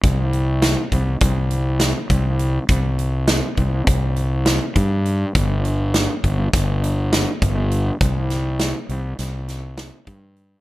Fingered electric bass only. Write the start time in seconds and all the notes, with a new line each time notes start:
0.04 C2
0.92 C2
1.21 C2
2.10 C2
2.69 C2
3.58 C2
3.87 C2
4.76 G2
5.36 G1
6.24 G1
6.54 G1
7.42 G1
8.01 C2
8.89 C2
9.19 C2
10.07 G2